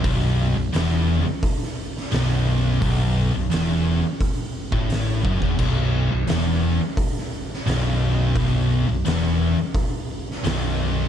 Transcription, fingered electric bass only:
0.04 0.53 B0 loud
0.56 0.73 B0 medium
0.74 1.23 E1 loud
2.13 2.78 B0 loud
2.81 3.30 B0 medium
3.35 3.51 B0 medium
3.53 4.00 E1 loud
4.73 5.21 A1 medium
5.25 5.41 F#1 medium
5.42 5.58 E1 loud
5.59 6.07 B0 medium
6.13 6.28 B0 medium
6.30 6.77 E1 medium
7.67 8.32 B0 medium
8.36 8.84 B0 medium
8.89 9.04 B0 medium
9.05 9.53 E1 loud
10.45 11.08 B0 medium

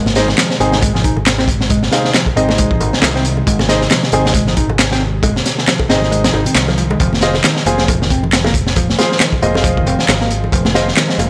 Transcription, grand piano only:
0.16 0.26 D#4 medium
0.16 0.26 G#4 medium
0.16 0.26 C5 medium
0.16 0.26 D#5 medium
0.60 0.76 D#4 medium
0.60 0.76 G#4 medium
0.60 0.76 C5 medium
0.60 0.76 G#5 medium
1.92 2.08 D#4 medium
1.92 2.08 G#4 medium
1.92 2.08 C5 medium
1.92 2.08 F5 medium
2.37 3.67 D#4 medium
2.37 3.67 G#4 medium
2.37 3.67 C5 medium
2.37 3.67 D#5 medium
3.69 3.79 D#4 medium
3.69 3.79 G#4 medium
3.69 3.79 C5 medium
3.69 3.79 D#5 medium
4.13 4.29 D#4 medium
4.13 4.29 G#4 medium
4.13 4.29 C5 medium
4.13 4.29 G#5 medium
5.90 6.99 D#4 medium
5.90 6.99 G#4 medium
5.90 6.99 C5 medium
5.90 6.99 D#5 medium
7.22 7.32 F4 medium
7.22 7.32 G#4 medium
7.22 7.32 C5 medium
7.22 7.33 D#5 medium
7.66 7.82 F4 medium
7.66 7.82 G#4 medium
7.66 7.82 C5 medium
7.66 7.82 G#5 medium
8.98 9.14 F4 medium
8.98 9.14 G#4 medium
8.98 9.14 C5 medium
8.98 9.14 F5 medium
9.43 10.73 F4 medium
9.43 10.73 G#4 medium
9.43 10.73 C5 medium
9.43 10.73 D#5 medium
10.75 10.85 F4 medium
10.75 10.85 G#4 medium
10.75 10.85 C5 medium
10.75 10.85 D#5 medium

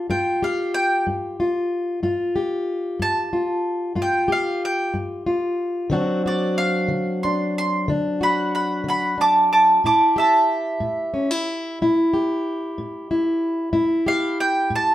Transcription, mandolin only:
0.11 0.41 G5 medium
0.44 0.74 F5 medium
0.74 1.05 G5 loud
3.02 3.96 A5 loud
4.02 4.31 G5 medium
4.32 4.63 F5 medium
4.65 4.95 G5 medium
6.27 6.58 D5 medium
6.58 7.21 F5 medium
7.23 7.54 C6 medium
7.58 7.88 C6 medium
8.23 8.52 F#5 medium
8.23 8.53 B5 medium
8.55 8.84 F#5 medium
8.55 8.86 B5 medium
8.88 9.17 F#5 medium
8.88 9.19 B5 medium
9.21 9.50 A5 medium
9.21 9.51 D6 medium
9.53 9.82 A5 medium
9.53 9.83 D6 medium
9.86 10.15 A5 medium
9.86 10.16 D6 medium
10.18 12.08 E5 medium
10.18 12.09 A5 medium
14.08 14.39 F5 medium
14.40 14.72 G5 medium
14.75 14.95 A5 medium

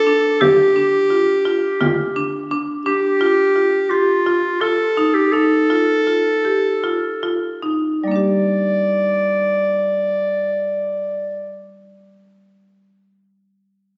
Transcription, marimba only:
0.07 0.28 D4 medium
0.41 0.62 G4 medium
0.76 0.97 D4 medium
1.10 1.32 F4 medium
1.45 1.67 F4 medium
1.81 2.02 F4 medium
2.16 2.37 D4 medium
2.51 2.72 D4 medium
2.86 3.07 D4 medium
3.21 3.42 F4 medium
3.56 3.77 F4 medium
3.91 4.12 G4 medium
4.26 4.48 F4 medium
4.61 4.83 F4 medium
4.97 5.19 D#4 medium
5.33 5.55 D#4 medium
5.70 5.92 F4 medium
6.07 6.30 F4 medium
6.45 6.68 G4 medium
6.84 7.07 F4 medium
7.23 7.47 F4 medium
7.63 7.87 D#4 medium
8.04 12.34 G3 soft
8.08 12.38 A#3 soft
8.08 12.42 D4 soft
8.16 12.44 G4 soft

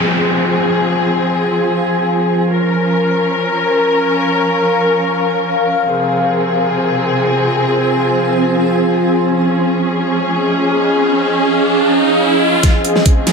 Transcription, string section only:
0.00 5.83 F3 medium
0.00 2.46 C4 medium
0.00 2.46 G#4 medium
2.49 5.84 C#4 medium
2.49 5.84 A#4 medium
5.87 9.22 C3 medium
5.87 12.59 F3 medium
5.87 9.22 C4 medium
5.87 9.22 G#4 medium
9.25 12.60 C#4 medium
9.25 12.60 G#4 medium
12.63 13.33 F3 medium
12.63 13.33 C4 medium
12.63 13.33 G#4 medium

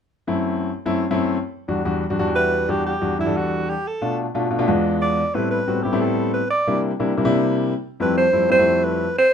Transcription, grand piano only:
0.27 0.68 F#2 medium
0.27 0.68 A3 medium
0.27 0.68 C4 medium
0.27 0.68 E4 medium
0.86 1.03 F#2 medium
0.86 1.03 A3 medium
0.86 1.03 C4 medium
0.86 1.03 E4 loud
1.11 1.36 F#2 medium
1.11 1.36 A3 medium
1.11 1.36 C4 medium
1.11 1.36 E4 loud
1.68 1.80 E2 medium
1.68 1.80 G3 medium
1.68 1.80 D4 medium
1.68 1.80 F#4 medium
1.85 2.03 E2 medium
1.85 2.03 G3 medium
1.85 2.03 D4 medium
1.85 2.03 F#4 medium
2.10 2.16 E2 medium
2.10 2.16 G3 medium
2.10 2.16 D4 medium
2.10 2.16 F#4 medium
2.19 2.65 E2 medium
2.19 2.65 G3 medium
2.19 2.65 D4 medium
2.19 2.66 F#4 loud
2.19 2.27 A5 medium
2.27 2.35 G5 medium
2.36 2.51 E5 medium
2.52 2.68 D5 medium
2.68 2.92 E2 medium
2.68 2.92 G3 medium
2.68 2.92 D4 medium
2.68 2.92 F#4 medium
3.01 3.13 E2 medium
3.01 3.13 G3 medium
3.01 3.13 D4 medium
3.01 3.13 F#4 medium
3.19 3.24 E2 medium
3.19 3.24 G3 medium
3.19 3.25 D4 medium
3.19 3.24 E4 medium
3.26 3.73 E2 medium
3.26 3.73 G3 medium
3.26 3.73 D4 medium
3.26 3.73 A4 medium
4.01 4.25 B2 medium
4.01 4.25 A3 medium
4.01 4.25 D4 medium
4.01 4.25 F4 medium
4.35 4.46 B2 medium
4.35 4.46 A3 medium
4.35 4.46 D4 medium
4.35 4.46 F4 medium
4.50 4.57 B2 medium
4.50 4.57 A3 medium
4.50 4.57 D4 medium
4.50 4.57 F4 medium
4.59 4.67 B2 medium
4.59 4.68 A3 medium
4.59 4.66 D4 medium
4.59 4.66 F4 loud
4.67 5.21 E2 medium
4.67 5.21 G#3 medium
4.67 5.21 B3 medium
4.67 5.21 D4 medium
4.67 5.21 F4 medium
5.35 5.58 A2 medium
5.35 5.58 G3 medium
5.35 5.58 B3 medium
5.35 5.58 C4 medium
5.35 5.58 E4 medium
5.67 5.79 A2 medium
5.67 5.79 G3 medium
5.67 5.79 B3 medium
5.67 5.79 C4 medium
5.67 5.79 F#4 medium
5.85 5.90 A2 medium
5.85 5.90 G3 medium
5.85 5.90 B3 medium
5.85 5.90 C4 medium
5.85 5.90 E4 medium
5.93 6.39 A2 medium
5.93 6.39 G3 medium
5.93 6.39 B3 medium
5.93 6.39 C4 medium
5.93 6.39 E4 medium
6.67 6.90 C3 medium
6.67 6.90 G3 medium
6.67 6.91 A#3 medium
6.67 6.90 D4 medium
6.67 6.91 E4 medium
7.00 7.12 C3 medium
7.00 7.12 G3 medium
7.00 7.12 A#3 medium
7.00 7.12 D4 medium
7.00 7.12 E4 medium
7.17 7.23 C3 medium
7.17 7.23 G3 medium
7.17 7.23 A#3 medium
7.17 7.23 D4 medium
7.17 7.23 E4 medium
7.25 7.72 C3 loud
7.25 7.72 G3 medium
7.25 7.72 A#3 medium
7.25 7.72 D4 medium
7.25 7.72 E4 loud
8.00 8.23 F2 medium
8.00 8.23 G3 medium
8.00 8.23 A3 medium
8.00 8.23 C4 medium
8.00 8.23 E4 medium
8.33 8.45 F2 medium
8.33 8.45 G3 medium
8.33 8.45 A3 medium
8.33 8.45 C4 medium
8.33 8.45 E4 medium
8.49 8.55 F2 medium
8.49 8.55 G3 medium
8.49 8.55 A3 medium
8.49 8.55 C4 medium
8.49 8.55 E4 medium
8.58 9.04 F2 medium
8.58 9.04 G3 medium
8.58 9.05 A3 medium
8.58 9.05 C4 medium
8.58 9.05 E4 medium

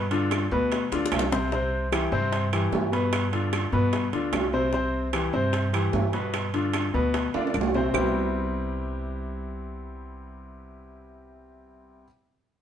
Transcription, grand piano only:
0.11 0.44 D3 medium
0.11 0.44 D4 medium
0.11 0.44 F4 medium
0.52 0.85 B2 medium
0.52 0.85 B3 medium
0.52 0.85 B4 medium
0.92 1.25 D3 medium
0.92 1.25 D4 medium
0.92 1.25 F4 medium
1.32 1.48 C3 medium
1.32 1.49 C4 medium
1.32 1.49 C5 medium
1.52 1.85 C3 medium
1.52 1.85 C4 medium
1.52 1.85 C5 medium
1.92 2.08 E3 medium
1.92 2.09 E4 medium
1.92 2.09 G4 medium
2.12 2.45 C3 medium
2.12 2.45 C4 medium
2.12 2.45 C5 medium
2.53 2.86 E3 medium
2.53 2.86 E4 medium
2.53 2.86 G4 medium
2.92 3.25 B2 medium
2.92 3.25 B3 medium
2.92 3.26 B4 medium
3.32 3.65 D3 medium
3.32 3.66 D4 medium
3.32 3.66 F4 medium
3.73 4.06 B2 medium
3.73 4.06 B3 medium
3.73 4.06 B4 medium
4.13 4.46 D3 medium
4.13 4.46 D4 medium
4.13 4.46 F4 medium
4.53 4.70 C3 medium
4.53 4.70 C4 medium
4.53 4.70 C5 medium
4.73 5.06 C3 medium
4.73 5.06 C4 medium
4.73 5.07 C5 medium
5.13 5.30 E3 medium
5.13 5.30 E4 medium
5.13 5.30 G4 medium
5.33 5.66 C3 medium
5.33 5.67 C4 medium
5.33 5.67 C5 medium
5.73 6.06 E3 medium
5.73 6.06 E4 medium
5.73 6.07 G4 medium
6.14 6.47 B2 medium
6.14 6.47 B3 medium
6.14 6.47 B4 medium
6.54 6.87 D3 medium
6.54 6.87 D4 medium
6.54 6.87 F4 medium
6.94 7.27 B2 medium
6.94 7.27 B3 medium
6.94 7.27 B4 medium
7.34 7.67 D3 medium
7.34 7.68 D4 medium
7.34 7.68 F4 medium
7.75 7.91 C3 medium
7.75 7.91 C4 medium
7.75 7.92 C5 medium
7.94 12.04 C3 medium
7.94 12.04 G3 medium
7.94 12.04 B3 medium
7.94 12.05 C4 medium
7.94 12.05 E4 medium
7.94 12.05 G4 medium

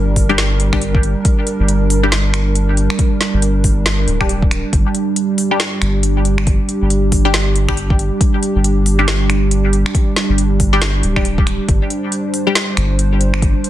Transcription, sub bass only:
0.00 1.15 G1 medium
1.60 2.88 G1 medium
3.34 4.07 G1 medium
4.07 4.62 D1 medium
4.73 4.85 G1 loud
5.82 6.58 G1 loud
6.82 8.10 G1 medium
8.55 9.84 G1 medium
10.29 11.03 G1 medium
11.03 11.58 D1 medium
11.69 11.80 G1 loud
12.77 13.54 G1 loud

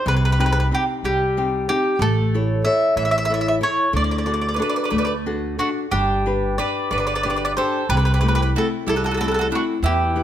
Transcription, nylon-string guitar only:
0.06 0.69 C3 medium
0.39 0.70 C4 soft
0.39 0.70 D#4 soft
0.39 0.71 G4 soft
0.71 1.24 C4 soft
0.71 1.24 D#4 soft
0.71 1.24 G4 soft
1.04 1.67 G3 medium
1.37 1.68 C4 soft
1.37 1.68 D#4 soft
1.37 1.69 G4 medium
1.69 1.94 C4 soft
1.69 1.94 D#4 soft
1.69 1.94 G4 medium
2.01 2.63 A3 medium
2.34 2.64 E4 soft
2.34 2.64 A4 soft
2.34 2.65 C#5 soft
2.65 3.17 E4 soft
2.65 3.17 A4 soft
2.65 3.17 C#5 soft
2.97 3.60 E3 medium
3.30 3.60 E4 soft
3.30 3.60 A4 soft
3.30 3.60 C#5 medium
3.61 3.86 E4 medium
3.61 3.86 A4 soft
3.61 3.87 C#5 medium
3.93 4.57 D3 medium
4.26 4.57 D4 soft
4.26 4.58 F#4 soft
4.26 4.58 A4 medium
4.58 5.13 D4 soft
4.58 5.13 F#4 soft
4.58 5.13 A4 soft
4.92 5.57 A3 medium
5.26 5.57 D4 soft
5.26 5.58 F#4 soft
5.26 5.58 A4 medium
5.59 5.85 D4 soft
5.59 5.86 F#4 soft
5.59 5.86 A4 soft
5.92 6.57 G3 medium
6.26 6.57 D4 soft
6.26 6.57 G4 soft
6.26 6.58 B4 soft
6.58 7.12 D4 soft
6.58 7.12 G4 soft
6.58 7.12 B4 soft
6.90 7.55 D3 medium
7.24 7.56 D4 soft
7.24 7.56 G4 soft
7.24 7.77 D5 soft
7.57 7.83 D4 soft
7.57 7.83 G4 soft
7.90 8.54 C3 medium
8.23 8.55 A3 soft
8.23 8.55 C4 soft
8.23 8.55 E4 medium
8.56 9.08 A3 soft
8.56 9.08 C4 soft
8.56 9.08 E4 medium
8.86 9.50 G3 medium
9.20 9.49 A3 soft
9.20 9.50 C4 soft
9.20 9.51 E4 soft
9.51 9.76 A3 soft
9.51 9.77 C4 soft
9.51 9.77 E4 medium
9.83 10.23 E3 medium
10.16 10.23 B3 soft
10.16 10.23 E4 soft
10.16 10.23 G4 soft

